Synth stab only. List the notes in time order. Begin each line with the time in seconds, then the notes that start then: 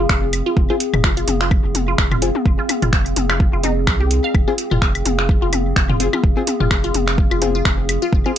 0.70 C4 F4 G#4
2.22 C4 F4 G#4
4.48 C4 F4 G#4
6.00 C4 F4 G#4
6.37 C4 F4 G#4
7.42 C4 F4 G#4
8.26 C4 F4 G#4